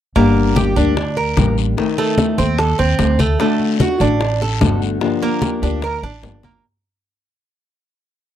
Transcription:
0.16 G1 D3 G3 A#3 D4 G4, high bongo, high conga, long guiro
0.36 high conga
0.56 G3 A#3 D4 G4, high bongo, high conga, short guiro
0.76 D2 G3 A#3 D4 G4, high conga, short guiro
0.96 muted nylon-string guitar stroke, high bongo, high conga, long guiro
1.17 A#4, high conga
1.37 A1 G3 A#3 D4 G4, high bongo, low bongo, high conga, short guiro
1.57 high conga, short guiro
1.77 D#3 A3 C4, high bongo, high conga, long guiro
1.98 A3, high conga
2.18 D#3 A3 C4, high bongo, high conga, short guiro
2.38 D#2 A3 C4, high bongo, high conga, short guiro
2.58 A4, muted nylon-string guitar stroke, high bongo, high conga, long guiro
2.78 D#2 C4, high bongo, high conga
2.99 D2 A3 C4, high bongo, low bongo, high conga, short guiro
3.19 A3, high bongo, high conga, short guiro
3.39 D3 A3 D4 F#4, high bongo, high conga, long guiro
3.60 high conga
3.79 D3 A3 D4 F#4, high bongo, high conga, short guiro
3.98 A1 A3 D4 F#4, high conga, short guiro
4.20 muted nylon-string guitar stroke, high bongo, high conga, long guiro
4.42 A4, high conga
4.61 G1 D3 A3 D4 F#4, high bongo, low bongo, high conga, short guiro
4.82 high conga, short guiro
5.00 D3 F3 A#3 D4 G4, high bongo, high conga, long guiro
5.22 A#3, high conga
5.42 F3 A#3 D4 G4, high bongo, high conga, short guiro
5.62 D2 F3 A#3 D4 G4, high bongo, high conga, short guiro
5.82 A#4, muted nylon-string guitar stroke, high bongo, high conga, long guiro
6.03 A1 D4, high bongo, high conga
6.22 G1 F3 A#3 D4 G4, high bongo, low bongo, high conga, short guiro
6.43 A#3, high bongo, high conga, short guiro

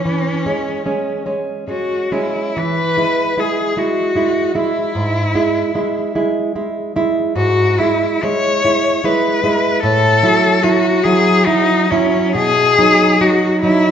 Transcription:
Already playing: C#4
0.05 E3
0.46 G#3 C#4
0.86 G#3 C#4
1.26 G#3 C#4
1.68 G#3 C#4 F#4
2.12 G#3 C#4 E4
2.57 E3 B4
2.97 G#3 E4
3.37 G#3 E4 G#4
3.77 G#3 E4 F#4
4.15 G#3 E4
4.55 G#3 E4
4.95 G#2
5.35 G#3 E4
5.75 G#3 E4
6.15 G#3 E4
6.55 G#3 E4
6.96 G#3 E4
7.36 G#2 F#4
7.79 G#3 E4
8.23 G#3 E4 C#5
8.64 G#3 E4
9.04 G#3 E4 B4
9.44 G#3 E4
9.83 A2 A4
10.23 F#3 E4
10.63 F#3 E4 F#4
11.04 F#3 E4 G#4
11.46 F#3 D#4 E4
11.90 F#3 C#4 E4
12.35 B2 G#4
12.79 F#3 D#4
13.21 F#3 D#4 F#4
13.62 F#3 D#4 E4

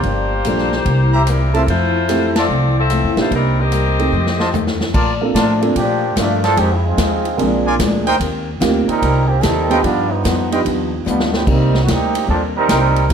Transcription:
Already playing: A#3 F4 G4 C5
0.03 G1 G2 F3 A#3 D4, kick, ride
0.45 A#1 G2 F3 A#3 D4 F4 A4, hi-hat pedal, ride
0.58 snare
0.72 snare
0.85 C2 C3 G3 A#3 E4, kick, ride
1.13 G4 C5 E5 A#5
1.27 C3 G3 A#3 C4 E4 A#4, cross-stick, hi-hat pedal, ride
1.54 A3 C4 E4 F4 A4 C5 E5 A5, ride
1.67 F2 E3 A3 C4 E4 F4 C5, kick, ride
2.08 F2 E3 A3 C4 E4 G4, snare, hi-hat pedal, ride
2.36 C4 F4 A4 C5 D5 E5 A5, snare, ride
2.48 C2 F2 E3 A3 C4
2.79 C4 F4 A4 E5
2.90 F2 E3 A3 C4, cross-stick, hi-hat pedal, ride
3.03 E2
3.16 A#1 A#3 D4 D#4 F4 G4, snare, ride
3.21 A3 E4 C5
3.30 C2 C3 G3 A#3 D#4, kick, ride
3.34 G3 C4 D#4 A#4
3.60 C4 G4 A#4 D#5
3.71 C3 G3 A#3 D#4, hi-hat pedal, ride
3.99 A3 C4 D#4 G4, ride
4.12 F2 D#3 A3 C4
4.27 snare
4.39 F4 C5 D#5 A5, snare
4.53 F2 D#3 A3 C4, floor tom, hi-hat pedal
4.67 snare
4.81 snare
4.93 A#2 F3 A3 D4 F4 A#4 D5 A5, kick, crash
5.21 A#3 C4 D4 F4 A4
5.34 A2 A#2 F3 A3 D4 F4 A#4 D5 A5, kick, snare, hi-hat pedal, ride
5.39 F3 A3 D4
5.61 A#3 C4 D4 F4 A4, ride
5.75 A#2 F3 A3 A#3 D4 G4, kick, ride
6.16 G2 A#2 F3 A3 A#3 D4 F4, kick, snare, hi-hat pedal, ride
6.44 F3 A#3 D4 A4, snare, ride
6.56 F2 D#3 F3 G#3 C4 D#4 G4, kick, ride
6.75 E4
6.85 G#3 C4 D#4 F4
6.97 D#2 F3 G#3 D#4 G4, kick, snare, hi-hat pedal, ride
7.25 ride
7.37 A#1 A#2 F3 G#3 A#3 C4 D4 F4 G#4, kick, ride
7.66 F4 A#4 D5 G#5
7.79 D2 A#2 F3 G#3 D4, kick, snare, hi-hat pedal, ride
8.07 D#4 A#4 C5 G5, ride
8.20 D#2 D#3 A#3 C4 G4, kick, ride
8.60 D2 D#3 A#3 C4 D#4 F4 G4, kick, snare, hi-hat pedal, ride
8.88 G3 C4 D#4 A#4, muted upright bass stroke, ride
9.02 C2 D#3 A#3 C4 G4, kick, ride
9.27 D#3 A#3 C4 G4
9.41 D#2 D#3 G3 A#3 C4 D#4 G4 A4, kick, snare, hi-hat pedal, ride
9.70 B3 D4 D#4 F4 G4 B4 D#5 G5, ride
9.82 G2 F3 G3 B3 D4 D#4 F4, kick, ride
10.10 F3 G3 B3 D#4
10.24 F2 G2 F3 B3 D#4, kick, snare, hi-hat pedal, ride
10.52 B3 D4 D#4 F4 G4 B4 D#5 G5, ride
10.65 D#2 G2 F3 B3 D#4, kick, ride
11.05 D2 G2 F3 G3 B3 D4 D#4 F4, hi-hat pedal
11.20 snare
11.34 F3 B3 D4 G4, snare
11.46 C2 C3 G3 A#3 C4 D#4 G4 D5, kick, crash
11.74 snare
11.84 D2 C3 F#4
11.88 G3 A#3 C4 D#4 G4, kick, snare, hi-hat pedal, ride
12.15 ride
12.27 D#2 C3 F3 G3 A#3 D4 D#4 A4, kick
12.57 G3 C4 D#4 A#4
12.69 C2 C3 G3 A#3 D#4 A#4 C5 G5, kick, snare, hi-hat pedal, ride
12.96 ride
13.09 E2 E3 F#3 G3, kick, ride

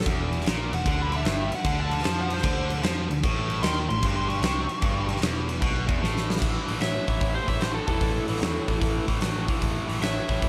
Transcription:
0.01 snare
0.06 E1 E2, kick, crash
0.33 crash
0.41 snare
0.46 A#1 A#2, snare, crash
0.72 E1 E2 F#5, crash
0.85 D2 D3, kick, crash
1.02 B5
1.12 crash
1.16 E5
1.25 G1 G2, snare, crash
1.52 F#5, muted picked electric bass stroke, muted overdriven electric guitar stroke, crash
1.65 D2 D3, kick, crash
1.81 A5
1.91 crash
1.99 snare
2.04 F2 F3, snare, crash
2.21 F#5
2.30 C5, crash
2.38 snare
2.43 D2 D3, kick, crash
2.70 crash
2.83 F2 F3, snare, crash
3.10 D2 D3, crash
3.23 A1 A2, kick, crash
3.50 crash
3.63 D#2 D#3 C6, snare, crash
3.89 A1 A2 C6, crash
4.03 G1 G2, kick, crash
4.16 C6
4.28 C#6, crash
4.42 C2 C3, snare, crash
4.69 muted overdriven electric guitar stroke, crash
4.82 G1 G2, kick, crash
5.09 crash
5.17 snare
5.21 E1 E2, snare, crash
5.49 crash
5.61 B1 B2, kick, crash
5.87 E1 E2, kick, crash
6.00 A1 A2, snare
6.17 snare
6.30 snare
6.36 A2 E3, snare
6.42 A1, kick, crash
6.66 A1 A2 E3, open hi-hat
6.80 A1 A2 F#3 C#5 E5, snare, open hi-hat
7.07 A1 A2 E3, kick, open hi-hat
7.20 A1 A2 E3, kick, open hi-hat
7.35 G4 C5
7.47 A1 A2 E3 C#5 E5, kick, open hi-hat
7.60 A1 A2 F#3 G4 C5, snare, open hi-hat
7.74 F#4 A4
7.87 E1 A2 E3 A4, kick, open hi-hat
7.91 E4
8.01 A1 A2 E3, kick, open hi-hat
8.28 A1 A2 E3, open hi-hat
8.36 snare
8.41 E2 A2 F#3, snare, open hi-hat
8.68 A1 A2 E3, kick, open hi-hat
8.80 A1 A2 E3, kick, open hi-hat
9.08 A1 A2 E3, kick, open hi-hat
9.21 A1 A2 F#3, snare, open hi-hat
9.47 A2 E3, kick, open hi-hat
9.60 A1 A2 E3, kick, open hi-hat
9.87 A1 A2 E3, open hi-hat
10.00 A1 A2 F#3 C#5 E5, snare, open hi-hat
10.28 A1 A2 E3, kick, open hi-hat
10.41 A1 A2 E3, kick, open hi-hat

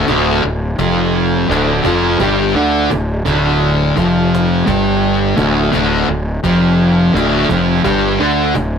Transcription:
0.08 D1 D2 D3, cajon bass
0.43 D1 D2
0.79 F1 F2 F3, cajon bass
1.49 D1 D2 D3, cajon slap
1.84 F1 F2 F3, cajon bass
2.20 G1 G2 G3, cajon bass
2.55 D2 D3 D4
2.90 D1 D2, cajon bass
3.11 cajon slap
3.26 D1 D2 D3, cajon bass
3.96 F1 F2 F3, cajon bass
4.35 cajon slap
4.66 G1 G2 G3, cajon bass
5.37 D1 D2 D3, cajon bass
5.73 D1 D2 D3, cajon bass
6.08 D1 D2
6.43 F1 F2 F3, cajon bass
7.14 D1 D2 D3, cajon slap
7.49 F1 F2 F3, cajon bass
7.84 G1 G2 G3, cajon bass
8.20 D2 D3 D4
8.55 D1 D2, cajon bass
8.75 cajon slap

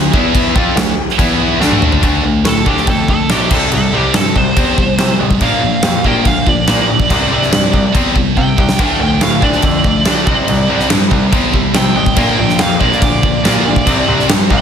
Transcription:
Already playing: D2 D3
0.13 E2 E3 B3 E4, kick
0.35 kick, crash
0.55 F2 F3 C4 F4, kick
0.75 D2 D3 A3, snare, crash
1.09 snare
1.18 E2 E3 B3 E4, kick, crash
1.60 D2 D3 A3 D4, snare
1.72 high tom
1.82 mid tom
1.92 floor tom
2.02 D2 D3 A3 D4, kick, crash
2.23 D2 D3 A3
2.44 A2 D3 A3 A4, snare, crash
2.66 D2 D3 A3 D4 G4, kick
2.77 snare
2.87 F2 D3 A3 A4, kick, crash
3.08 D3 A3 A4, kick
3.29 B1 D3 A3 D4 G4, snare, crash
3.51 C2 C3 G3 C4 A4, kick, crash
3.71 C2 C3 G3 A4, crash
3.93 C2 C3 G3 C4 G4
4.14 G2 C3 G3 A4, snare, crash
4.36 C2 C3 G3 C5, kick
4.56 E2 C3 G3 C4, kick, crash
4.78 C3 G3, kick
4.98 C3 G3, snare, crash
5.19 A1 C3 G3
5.31 kick
5.41 A#1 A#2 F3 A#3 F5, kick, crash
5.61 A#1 A#2 F3
5.83 F2 A#2 F3, snare, crash
6.04 A#1 A#2 F3 A#3 G5, kick
6.25 D2 A#2 F3 F5, kick, crash
6.47 A#2 F3 D5, kick
6.67 A#2 F3 A#3 D5, snare, crash
6.88 A#1 A#2 F3
7.00 kick
7.10 C2 C3 G3 C4, kick, crash
7.32 C2 C3 G3 C4
7.42 snare
7.52 G2 C3 G3, snare, crash
7.73 C2 C3 G3, kick
7.95 E2 C3 G3 C4, kick, crash
8.16 C3 G3, kick
8.37 C3 G3 G5, kick
8.58 C2 C3 G3, kick
8.69 snare
8.79 D2 D3 F3 A3 D4, kick, crash
9.00 D2 D3 A3 G5
9.21 A2 D3 A3 F5, snare, crash
9.42 D2 D3 F3 A3 D4 D5, kick
9.53 snare
9.62 F2 D3 A3 D5, kick, crash
9.84 D3 A3, kick
10.05 D3 F3 A3 D4, snare, crash
10.26 C2 C3 G3 C4 E4, kick
10.48 C2 C3 G3, crash
10.69 C2 C3 G3 C4
10.80 snare
10.90 G2 C3 G3 C4 E4, snare, crash
11.11 C2 C3 G3, kick
11.32 E2 C3 G3 C4, kick, crash
11.53 C3 G3 C4 E4, kick
11.74 C3 G3 G5, snare, crash
11.96 A1 C3 G3
12.06 kick
12.16 A#1 A#2 D3 F3 A#3 F4, kick, crash
12.38 A#1 A#2 F3 G5
12.49 snare
12.59 F2 A#2 F3 F5, snare, crash
12.79 A#1 A#2 D3 F3 A#3 F4 D5, kick
12.92 snare
13.01 D2 A#2 F3 D5, kick, crash
13.23 A#2 F3, kick
13.43 A#2 D3 F3 A#3, snare, crash
13.47 F4
13.65 D2 A#2 F3
13.76 kick
13.86 C2 C3 G3 C4 E4, kick, crash
14.08 C2 C3 G3 C4
14.19 snare
14.29 G2 C3 G3, snare, crash
14.50 C2 C3 G3 C4 E4 G5, kick

